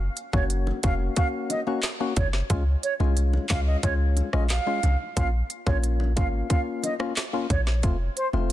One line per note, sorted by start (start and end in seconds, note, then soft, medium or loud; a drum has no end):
0.17 closed hi-hat medium
0.33 0.72 F#1 loud
0.33 0.79 A#3 medium
0.33 0.80 C#4 medium
0.33 0.80 F#4 medium
0.33 0.43 C#5 medium
0.33 kick medium
0.33 high bongo medium
0.50 closed hi-hat medium
0.67 high bongo medium
0.83 1.09 F1 medium
0.83 1.14 A#3 medium
0.83 1.14 C#4 medium
0.83 1.14 F#4 medium
0.83 0.93 F5 medium
0.83 kick loud
0.83 closed hi-hat medium
0.83 low bongo medium
1.16 1.63 A#3 medium
1.16 1.63 C#4 medium
1.16 1.63 F#4 loud
1.16 1.27 F5 medium
1.16 kick loud
1.16 closed hi-hat medium
1.50 1.60 D#5 medium
1.50 closed hi-hat medium
1.50 high bongo medium
1.67 1.80 A#3 medium
1.67 1.80 C#4 medium
1.67 1.81 F#4 medium
1.83 snare loud
1.83 clap medium
1.83 closed hi-hat medium
2.00 2.14 A#3 medium
2.00 2.14 C#4 medium
2.00 2.14 F#4 medium
2.17 2.42 F#1 loud
2.17 2.27 C#5 medium
2.17 kick loud
2.17 closed hi-hat medium
2.17 high bongo medium
2.17 low bongo medium
2.33 snare medium
2.50 2.76 C#2 loud
2.50 2.63 G#3 loud
2.50 2.64 C#4 medium
2.50 2.64 F4 loud
2.50 kick loud
2.50 closed hi-hat medium
2.83 2.93 C#5 medium
2.83 closed hi-hat medium
3.00 3.38 C2 loud
3.00 3.46 G#3 medium
3.00 3.46 C#4 medium
3.00 3.46 F4 medium
3.00 high bongo medium
3.17 closed hi-hat medium
3.33 high bongo medium
3.49 3.76 C#2 loud
3.49 3.81 G#3 medium
3.49 3.81 C#4 medium
3.49 3.81 F4 medium
3.49 3.60 F5 medium
3.49 kick loud
3.49 snare loud
3.49 clap medium
3.49 closed hi-hat medium
3.49 low bongo medium
3.67 3.77 D#5 medium
3.83 4.22 C#2 loud
3.83 4.29 G#3 loud
3.83 4.30 C#4 medium
3.83 4.30 F4 loud
3.83 3.94 C#5 medium
3.83 kick loud
3.83 closed hi-hat medium
4.17 closed hi-hat medium
4.17 high bongo medium
4.33 4.59 A#1 medium
4.33 4.47 G#3 medium
4.33 4.47 C#4 medium
4.33 4.47 F4 medium
4.33 4.43 D#5 medium
4.33 cross-stick loud
4.50 4.97 F5 medium
4.50 snare loud
4.50 clap medium
4.50 closed hi-hat medium
4.67 4.80 G#3 medium
4.67 4.80 C#4 medium
4.67 4.80 F4 medium
4.83 4.96 C2 loud
4.83 closed hi-hat medium
4.83 high bongo medium
4.83 low bongo medium
5.17 5.42 A#1 loud
5.17 5.30 A#3 loud
5.17 5.30 C#4 medium
5.17 5.30 F4 loud
5.17 5.27 F5 loud
5.17 kick loud
5.17 closed hi-hat medium
5.50 closed hi-hat medium
5.67 6.18 A#1 medium
5.67 6.13 A#3 medium
5.67 6.13 C#4 medium
5.67 6.13 F4 medium
5.67 5.77 C#5 medium
5.67 kick medium
5.67 high bongo medium
5.84 closed hi-hat medium
6.00 high bongo medium
6.16 6.42 G#1 loud
6.16 6.47 A#3 medium
6.16 6.48 C#4 medium
6.16 6.48 F4 medium
6.16 6.27 F5 medium
6.16 kick loud
6.16 closed hi-hat medium
6.16 low bongo medium
6.50 6.96 A#3 loud
6.50 6.96 C#4 medium
6.50 6.96 F4 loud
6.50 6.60 F5 medium
6.50 kick loud
6.50 closed hi-hat medium
6.83 6.94 D#5 medium
6.83 closed hi-hat medium
6.83 high bongo medium
7.00 7.13 A#3 medium
7.00 7.13 C#4 medium
7.00 7.14 F4 medium
7.00 cross-stick loud
7.17 snare loud
7.17 clap medium
7.17 closed hi-hat medium
7.33 7.47 A#3 medium
7.33 7.47 C#4 medium
7.33 7.47 F4 medium
7.50 7.85 A#1 medium
7.50 7.60 C#5 medium
7.50 kick loud
7.50 closed hi-hat medium
7.50 high bongo medium
7.50 low bongo medium
7.67 snare medium
7.83 8.09 F1 loud
7.83 7.97 A3 loud
7.83 7.97 C4 medium
7.83 7.97 F4 loud
7.83 kick loud
7.83 closed hi-hat medium
8.16 8.27 C5 medium
8.16 closed hi-hat medium
8.33 8.53 F1 medium
8.33 8.53 A3 medium
8.33 8.53 C4 medium
8.33 8.53 F4 medium
8.33 high bongo medium